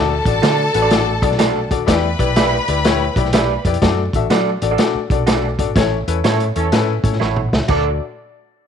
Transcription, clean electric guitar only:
0.42 0.61 F#4 medium
0.42 0.61 A4 medium
0.42 0.62 D5 medium
0.82 0.91 F#4 soft
0.82 0.90 A4 medium
0.82 0.90 D5 medium
1.39 1.58 F#4 medium
1.39 1.58 A4 medium
1.39 1.59 D5 medium
2.37 2.56 G4 medium
2.37 2.56 B4 medium
2.37 2.56 D5 medium
3.33 3.52 G4 medium
3.33 3.53 B4 loud
3.33 3.53 D5 loud
4.30 4.49 F#4 medium
4.30 4.50 A4 medium
4.30 4.50 D5 loud
4.71 4.79 F#4 medium
4.71 4.79 A4 medium
4.71 4.79 D5 medium
5.27 5.46 F#4 medium
5.27 5.46 A4 medium
5.27 5.47 D5 medium
6.24 6.43 E4 medium
6.24 6.43 A4 medium
6.24 6.44 C#5 medium
7.20 7.39 E4 medium
7.20 7.40 A4 medium
7.20 7.40 C#5 medium
7.68 7.88 F#4 medium
7.68 7.88 A4 medium
7.68 7.89 D5 medium

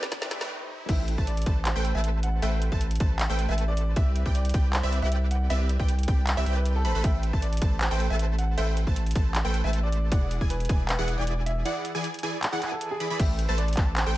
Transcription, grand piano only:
0.41 0.50 B4 medium
0.89 1.21 E5 loud
1.27 1.59 D5 medium
1.66 1.90 C5 loud
1.95 2.18 E5 medium
2.23 2.39 F#5 medium
2.42 2.58 E5 loud
3.49 3.64 E5 medium
3.68 3.92 D5 loud
3.96 4.28 E5 loud
4.35 4.67 D5 medium
4.73 4.97 C5 loud
5.03 5.26 E5 medium
5.31 5.47 F#5 medium
5.50 5.66 E5 loud
6.56 6.72 B4 medium
6.76 6.99 A4 loud
7.04 7.36 E5 loud
7.42 7.74 D5 medium
7.81 8.05 C5 loud
8.10 8.34 E5 medium
8.38 8.55 F#5 medium
8.57 8.74 E5 loud
9.64 9.80 E5 medium
9.83 10.07 D5 medium
10.12 10.44 D5 loud
10.50 10.82 B4 loud
10.88 11.13 B4 loud
11.18 11.42 D5 medium
11.46 11.62 E5 medium
11.65 11.82 D5 loud
12.72 12.87 A4 medium
12.91 13.15 G#4 loud
13.20 13.52 E5 loud
13.58 13.90 D5 loud
13.96 14.18 C5 loud

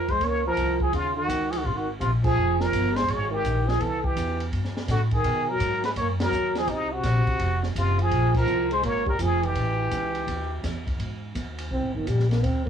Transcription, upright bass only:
0.00 0.19 F2 medium
0.20 0.56 C#2 medium
0.57 0.92 C2 medium
0.92 1.28 D#2 medium
1.29 1.64 C#2 medium
1.65 2.00 G#1 medium
2.00 2.35 A#1 medium
2.36 2.71 F1 medium
2.72 3.07 G1 medium
3.08 3.43 G#1 medium
3.44 3.79 A#1 medium
3.80 4.15 C2 medium
4.16 4.51 E2 medium
4.52 4.87 G2 medium
4.88 5.23 A2 medium
5.24 5.59 B2 medium
5.60 5.95 G#2 medium
5.96 6.31 F#2 medium
6.31 6.66 D#2 medium
6.67 7.02 C2 medium
7.03 7.25 A#1 medium
7.39 7.74 F1 medium
7.75 8.10 F#1 medium
8.11 8.46 A#1 medium
8.46 8.82 C2 medium
8.83 9.18 G#1 medium
9.19 9.54 F1 medium
9.55 9.90 A1 medium
9.91 10.26 C#2 medium
10.27 10.62 D#2 medium
10.63 10.98 E2 medium
10.99 11.34 G#2 medium
11.35 11.70 D#2 medium
11.70 11.84 C2 medium
11.83 11.94 G#1 medium
11.94 12.06 G1 medium
12.07 12.42 A#1 medium
12.43 12.69 D2 medium

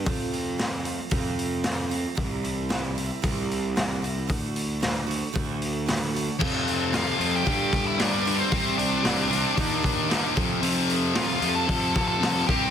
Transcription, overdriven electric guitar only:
6.39 6.91 F2 loud
6.39 6.92 C3 medium
6.39 6.92 F3 loud
6.92 7.17 F2 medium
6.92 7.17 C3 medium
6.92 7.18 F3 medium
7.18 7.44 F2 medium
7.18 7.44 C3 medium
7.18 7.44 F3 medium
7.45 7.97 G2 medium
7.45 7.97 D3 medium
7.45 7.98 G3 medium
7.98 8.26 G2 medium
7.98 8.26 D3 medium
7.98 8.27 G3 medium
8.27 8.51 G2 medium
8.27 8.51 D3 medium
8.27 8.51 G3 medium
8.51 9.01 C3 medium
8.51 9.02 G3 loud
8.51 9.03 C4 loud
9.03 9.27 C3 medium
9.03 9.28 G3 medium
9.03 9.29 C4 medium
9.28 9.55 C3 medium
9.28 9.55 G3 medium
9.28 9.56 C4 medium
9.56 10.09 D#3 medium
9.56 10.08 A#3 medium
9.56 10.09 D#4 medium
10.09 10.35 D#3 medium
10.09 10.35 A#3 medium
10.09 10.35 D#4 medium
10.36 10.60 F2 loud
10.36 10.61 C3 loud
10.36 10.61 F3 loud
10.61 11.13 F2 loud
10.61 11.14 C3 loud
10.61 11.14 F3 loud
11.14 11.40 F2 medium
11.14 11.40 C3 medium
11.14 11.40 F3 loud
11.41 11.65 F2 medium
11.41 11.66 C3 medium
11.41 11.67 F3 medium
11.66 12.19 F2 medium
11.66 12.19 C3 loud
11.66 12.20 F3 loud
12.20 12.46 F2 medium
12.20 12.46 C3 medium
12.20 12.47 F3 medium
12.47 12.70 C3 medium
12.47 12.70 G3 medium
12.47 12.70 C4 loud

